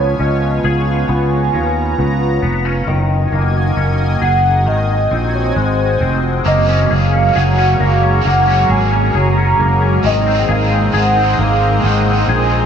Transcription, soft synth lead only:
0.00 0.21 C#5 medium
0.20 0.66 D#5 medium
0.65 1.11 F5 medium
1.09 2.43 G#5 loud
4.23 4.69 F#5 medium
4.68 5.36 D#5 loud
5.35 5.58 C#5 medium
5.57 6.24 C5 medium
6.47 6.94 D#5 loud
6.92 7.38 F5 loud
7.37 7.83 F#5 loud
7.82 8.28 F5 loud
8.27 8.73 F#5 loud
8.71 9.18 G#5 loud
9.16 9.83 A#5 loud
10.06 10.52 D#5 loud
10.50 10.97 F5 loud
10.95 11.41 F#5 loud
11.39 11.83 F5 loud
11.85 12.30 F#5 loud
12.29 12.66 G#5 loud

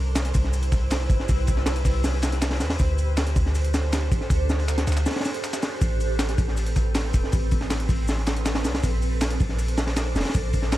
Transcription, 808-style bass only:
0.00 0.33 C2 loud
0.35 1.09 C2 loud
1.10 1.18 G1 medium
1.29 1.84 C2 loud
1.85 2.62 C2 loud
2.61 2.78 E2 medium
2.80 3.35 D2 loud
3.36 4.10 D2 loud
4.12 4.20 A1 medium
4.30 4.86 D2 loud
4.87 5.06 D2 loud
5.81 6.37 A1 loud
6.38 7.12 A1 loud
7.14 7.22 E1 medium
7.33 7.88 A1 loud
7.89 8.66 A1 loud
8.65 8.82 C2 medium
8.83 9.39 A#1 loud
9.41 10.14 A#1 loud
10.15 10.24 F1 loud
10.35 10.78 A#1 loud

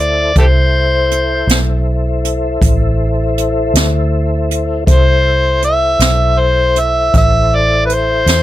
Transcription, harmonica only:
0.00 0.36 D5 medium
0.38 0.46 G4 medium
0.38 0.45 A4 medium
0.38 1.83 C5 medium
4.91 5.60 C5 medium
5.65 6.41 E5 medium
6.40 6.81 C5 medium
6.79 7.15 E5 medium
7.17 7.57 E5 loud
7.55 7.84 D5 medium
7.86 7.96 B4 medium
7.94 8.43 C5 medium

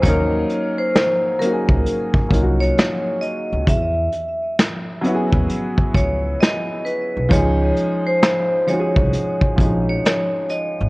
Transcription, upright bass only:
0.04 0.43 D#2 loud
1.70 1.83 C#2 medium
2.31 2.70 C2 medium
3.52 3.65 C#2 medium
3.68 4.06 E2 loud
5.33 5.47 D#2 medium
5.79 muted upright bass stroke soft
5.95 6.34 C#2 medium
7.17 7.29 B1 medium
7.32 7.70 C#2 loud
8.97 9.10 C2 medium
9.42 muted upright bass stroke soft
9.59 9.97 A#1 medium
10.80 10.89 G#1 loud

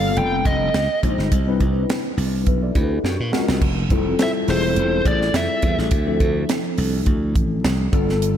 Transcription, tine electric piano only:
0.00 0.76 G3 loud
0.00 0.76 A#3 medium
0.00 0.76 B3 medium
0.00 0.76 D4 medium
0.00 0.76 F4 medium
0.00 0.76 A4 loud
1.03 1.32 G#3 medium
1.03 1.32 C#4 medium
1.03 1.32 D#4 medium
1.03 1.32 F4 medium
1.03 1.32 C5 medium
1.47 2.27 G3 medium
1.47 2.27 C4 medium
1.47 2.28 D4 medium
1.47 2.28 E4 medium
1.47 2.28 B4 medium
2.47 2.62 B4 soft
2.47 2.62 E5 medium
2.63 2.75 A4 medium
2.63 2.75 D5 medium
2.76 2.91 E4 medium
2.76 2.90 B4 medium
2.91 3.19 D4 medium
2.91 3.18 G4 medium
3.04 3.31 C#6 medium
3.32 3.61 G#3 medium
3.32 3.61 C#4 medium
3.32 3.62 F4 medium
3.32 3.62 F#4 medium
3.32 3.62 A#4 medium
3.32 3.59 F#5 medium
3.91 4.11 G3 medium
3.91 4.11 C4 medium
3.91 4.12 E4 medium
3.91 4.12 F4 medium
3.91 4.12 A4 loud
4.19 4.40 G3 medium
4.19 4.40 C4 medium
4.19 4.40 E4 medium
4.19 4.40 F4 medium
4.19 4.40 A4 medium
4.47 5.29 G3 medium
4.47 5.29 C4 medium
4.47 5.29 E4 medium
4.47 5.29 F4 medium
4.47 4.55 G#4 medium
4.55 5.32 A4 medium
5.62 5.91 G3 medium
5.62 5.92 C4 medium
5.62 5.92 E4 medium
5.62 5.92 F4 medium
5.62 5.92 A4 medium
6.06 6.87 F3 medium
6.06 6.87 C4 medium
6.06 6.87 D4 medium
6.06 6.87 E4 medium
6.06 6.87 A4 medium
7.92 8.37 G3 loud
7.92 8.37 B3 medium
7.92 8.37 D4 medium
7.92 8.37 F4 medium
7.92 8.37 A4 loud

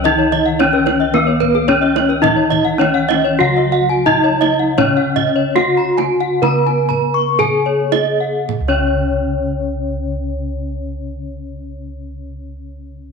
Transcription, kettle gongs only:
0.00 1.13 C#2 loud
0.05 0.58 D#4 medium
0.59 0.67 D#4 soft
1.14 2.76 D#3 medium
2.24 2.78 D#4 medium
3.41 5.52 C#3 medium
4.06 4.14 D#4 soft
4.78 7.35 C#4 medium
5.56 5.64 D#4 soft
6.42 9.62 C#3 medium
7.39 7.47 D#4 soft
8.61 13.12 C#2 medium

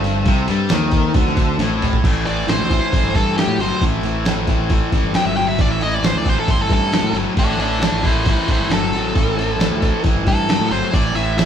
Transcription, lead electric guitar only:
2.26 2.48 D5 medium
2.50 3.14 C5 loud
3.16 3.37 A4 medium
3.37 3.59 G4 medium
3.61 3.82 C5 medium
5.16 5.26 G5 medium
5.26 5.37 E5 medium
5.37 5.48 G5 medium
5.48 5.59 E5 medium
5.61 5.71 D5 medium
5.71 5.82 E5 medium
5.82 5.94 D#5 medium
5.94 6.06 D5 medium
6.06 6.18 C5 medium
6.18 6.27 D5 medium
6.29 6.39 C5 medium
6.40 6.51 A4 medium
6.51 6.61 C5 medium
6.62 6.72 A4 medium
6.73 7.15 A4 loud
7.39 7.60 A4 medium
7.39 7.60 D5 medium
7.61 7.81 A4 medium
7.61 7.83 D5 medium
7.83 8.03 A4 medium
7.83 8.05 D5 medium
8.06 8.26 E4 medium
8.06 8.27 C5 medium
8.29 8.49 E4 medium
8.29 8.50 C5 medium
8.51 8.71 E4 medium
8.51 8.72 C5 medium
8.73 10.02 A4 loud
10.28 10.71 A4 medium
10.72 10.93 C5 medium
10.94 11.15 D5 medium
11.16 11.38 E5 medium
11.39 11.45 E5 loud

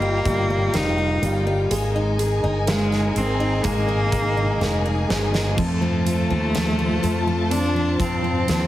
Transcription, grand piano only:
0.00 0.25 G3 medium
0.00 1.67 D#4 medium
0.25 0.48 G3 medium
0.50 0.73 G3 medium
0.74 0.97 G3 medium
0.98 1.21 G3 medium
1.22 1.45 G3 medium
1.46 1.70 G3 medium
1.70 2.17 G#3 medium
1.95 2.41 D#4 medium
2.19 2.65 G#3 medium
2.43 2.89 D#4 soft
2.67 3.13 G#3 medium
2.91 3.38 D#4 soft
3.14 3.61 G#3 medium
3.39 3.86 D#4 medium
3.63 4.10 G#3 medium
3.87 4.35 D#4 soft
4.12 4.59 G#3 medium
4.36 4.83 D#4 medium
4.60 5.07 G#3 medium
4.84 5.31 D#4 medium
5.08 5.56 G#3 medium
5.32 5.56 D#4 soft
5.57 5.79 F3 medium
5.81 6.03 F3 medium
6.05 6.28 F3 soft
6.29 6.52 F3 soft
6.54 6.76 F3 medium
6.78 7.01 F3 soft
7.02 7.25 F3 medium
7.26 7.73 F3 medium
7.50 8.67 C4 medium
7.74 7.97 F3 soft
7.99 8.21 F3 medium
8.22 8.45 F3 medium
8.47 8.67 F3 medium

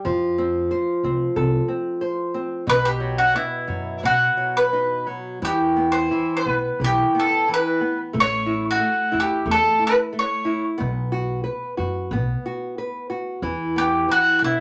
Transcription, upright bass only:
0.05 0.69 F2 medium
1.03 1.25 C2 medium
1.36 1.58 C2 medium
2.67 3.33 B1 medium
3.68 4.05 F#2 medium
4.03 4.26 B1 medium
5.42 6.09 E2 medium
6.46 6.68 B1 medium
6.80 7.02 B1 medium
8.14 8.79 A1 medium
9.13 9.35 E2 medium
9.46 9.68 E2 medium
10.80 11.44 B1 loud
11.79 12.12 F#2 medium
12.11 12.33 B1 medium
13.42 14.08 E2 medium
14.42 14.60 B1 medium

